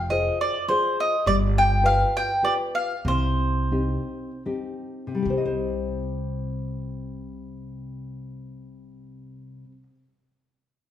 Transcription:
0.00 0.28 F1 medium
0.10 0.57 F4 soft
0.10 0.57 G#4 soft
0.10 0.57 C5 soft
0.10 0.38 D#5 medium
0.41 0.67 D5 medium
0.68 1.15 F4 soft
0.68 1.15 G#4 soft
0.68 0.96 C5 medium
0.68 1.15 C5 soft
1.00 1.25 D#5 medium
1.26 2.02 G1 medium
1.26 1.82 G3 medium
1.26 1.35 D5 loud
1.58 1.83 G5 loud
1.82 2.30 F4 soft
1.82 2.30 G4 soft
1.82 2.31 B4 soft
1.82 2.13 F5 medium
2.17 2.43 G5 loud
2.42 2.93 F4 soft
2.42 2.93 G4 soft
2.42 2.93 B4 medium
2.42 2.53 D5 medium
2.75 3.07 F5 medium
3.05 3.96 C2 medium
3.05 3.70 C3 medium
3.05 4.43 C5 loud
3.71 4.30 C4 soft
3.71 4.30 D#4 soft
3.71 4.31 G4 soft
4.45 5.10 C4 soft
4.45 5.10 D#4 soft
4.45 5.10 G4 soft
5.07 9.64 C3 medium
5.15 9.71 G3 medium
5.22 9.82 C2 medium
5.22 5.37 G4 medium
5.30 5.45 C5 soft
5.38 9.94 D#5 soft
5.45 10.02 C5 medium

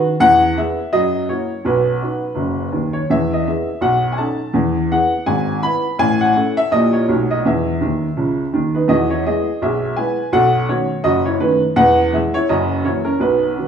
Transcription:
0.00 0.13 D#3 medium
0.00 0.14 F#4 medium
0.20 0.50 E2 medium
0.20 0.51 E3 medium
0.20 0.56 F#5 loud
0.57 0.76 B3 soft
0.57 0.77 E4 soft
0.57 0.77 G#4 soft
0.57 0.93 E5 medium
0.93 1.23 F#2 medium
0.93 1.23 F#3 medium
0.93 1.28 D#5 loud
1.29 1.49 A#3 soft
1.29 1.49 E4 soft
1.29 1.49 F#4 soft
1.29 1.65 C#5 medium
1.65 1.96 B1 medium
1.65 1.95 B2 medium
1.65 2.74 B4 medium
2.01 2.21 B3 soft
2.01 2.21 D#4 soft
2.01 2.22 F#4 soft
2.35 2.67 F#1 medium
2.35 2.66 F#2 medium
2.72 3.01 D#2 medium
2.72 3.02 D#3 medium
2.93 3.09 C#5 medium
3.10 3.40 E2 medium
3.10 3.40 E3 medium
3.10 3.31 E5 medium
3.33 3.47 D#5 medium
3.47 3.67 B3 soft
3.47 3.67 E4 soft
3.47 3.67 G#4 soft
3.47 3.83 E5 medium
3.81 4.12 B1 medium
3.81 4.12 B2 medium
3.81 4.12 F#5 medium
4.12 4.18 G#5 medium
4.17 4.38 C#4 soft
4.17 4.38 D#4 soft
4.17 4.38 A4 soft
4.17 4.54 A5 medium
4.54 4.84 E2 medium
4.54 4.85 E3 medium
4.92 5.11 B3 soft
4.92 5.11 E4 soft
4.92 5.11 G#4 soft
4.92 5.27 F#5 medium
5.26 5.57 G#1 medium
5.26 5.57 G#2 medium
5.26 5.62 G#5 medium
5.63 5.83 B3 soft
5.63 5.83 E4 soft
5.63 5.83 B4 soft
5.63 5.99 B5 medium
5.99 6.29 A1 medium
5.99 6.29 A2 medium
5.99 6.20 G#5 loud
6.21 6.56 F#5 medium
6.35 6.55 C#4 soft
6.35 6.55 E4 soft
6.35 6.56 A4 soft
6.57 6.72 E5 loud
6.71 7.02 A#1 medium
6.71 7.02 A#2 medium
6.71 6.91 A#3 soft
6.71 6.92 E4 soft
6.71 6.92 G4 soft
6.71 6.92 D#5 loud
6.93 7.29 C#5 medium
7.08 7.38 B1 medium
7.08 7.39 B2 medium
7.08 7.28 A3 soft
7.08 7.29 D#4 soft
7.08 7.29 F#4 soft
7.31 7.44 D#5 medium
7.45 7.75 E2 medium
7.45 7.75 E3 medium
7.45 8.53 E5 medium
7.81 8.08 D#2 medium
7.81 8.07 D#3 medium
8.17 8.43 C#2 medium
8.17 8.43 C#3 medium
8.53 8.79 D#2 soft
8.53 8.80 D#3 medium
8.75 8.88 D#4 soft
8.75 8.89 B4 medium
8.88 9.18 E2 medium
8.88 9.19 E3 medium
8.88 9.08 F#4 medium
8.88 9.09 D#5 medium
9.10 9.24 E4 medium
9.10 9.24 C#5 medium
9.25 9.45 G#3 soft
9.25 9.45 B3 soft
9.25 9.46 E4 soft
9.25 9.59 G#4 medium
9.25 9.61 D#5 medium
9.62 9.92 B1 medium
9.62 9.92 B2 medium
9.62 9.96 G#4 medium
9.62 9.97 E5 medium
9.96 10.16 G#3 soft
9.96 10.17 B3 soft
9.96 10.17 E4 soft
9.96 10.30 B4 medium
9.96 10.32 G#5 medium
10.32 10.63 B1 medium
10.32 10.63 B2 medium
10.32 10.67 A4 medium
10.32 10.69 F#5 medium
10.69 10.88 D#3 soft
10.69 10.88 A3 soft
10.69 10.89 C#4 soft
10.69 11.03 F#4 medium
10.69 11.05 C#5 medium
11.04 11.35 F#1 medium
11.04 11.35 F#2 medium
11.04 11.24 F#4 medium
11.04 11.25 D#5 medium
11.25 11.40 E4 medium
11.25 11.40 C#5 medium
11.40 11.60 D#3 soft
11.40 11.60 A3 soft
11.40 11.61 C#4 medium
11.40 11.61 D#4 soft
11.40 11.61 B4 medium
11.76 12.07 E2 medium
11.76 12.07 E3 medium
11.76 12.11 B4 medium
11.76 12.12 F#5 loud
12.13 12.33 E3 soft
12.13 12.33 G#3 soft
12.13 12.33 B3 soft
12.13 12.33 G#4 soft
12.13 12.34 E5 medium
12.34 12.49 E4 medium
12.34 12.49 C#5 medium
12.49 12.80 F#1 medium
12.49 12.80 F#2 medium
12.49 12.83 F#4 medium
12.49 12.85 D#5 medium
12.85 13.05 E3 soft
12.85 13.05 F#3 soft
12.85 13.05 A#3 soft
12.85 13.05 E4 medium
12.85 13.06 C#5 medium
13.05 13.20 C#4 medium
13.05 13.20 A#4 medium
13.19 13.51 B1 medium
13.19 13.51 B2 medium
13.19 13.68 D#4 medium
13.19 13.68 B4 medium
13.58 13.68 D#3 soft
13.58 13.68 F#3 soft
13.58 13.68 B3 soft

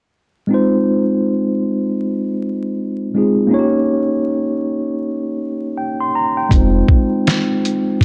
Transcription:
0.47 3.08 G#3 medium
0.47 3.09 C4 medium
0.47 3.09 D#4 medium
0.52 3.10 F4 medium
0.52 3.11 C5 medium
3.14 3.52 G#3 medium
3.14 3.52 C4 soft
3.14 3.50 D#4 soft
3.14 3.51 F4 soft
3.14 3.53 G#4 medium
3.47 6.45 A#3 medium
3.47 6.46 C#4 medium
3.47 6.47 D#4 medium
3.52 3.59 F4 medium
3.52 6.49 C#5 medium
3.59 6.51 G4 medium
5.78 5.98 G5 medium
6.00 6.14 C6 medium
6.15 6.35 A#5 medium
6.37 6.72 G5 medium
6.49 6.82 F1 loud
6.49 8.05 G#3 medium
6.49 8.05 C4 medium
6.49 8.05 D#4 medium
6.49 kick medium
6.49 closed hi-hat medium
6.54 8.05 F4 medium
6.54 8.05 C5 medium
6.88 kick medium
7.27 snare medium
7.27 closed hi-hat medium
7.65 closed hi-hat soft
8.01 kick medium

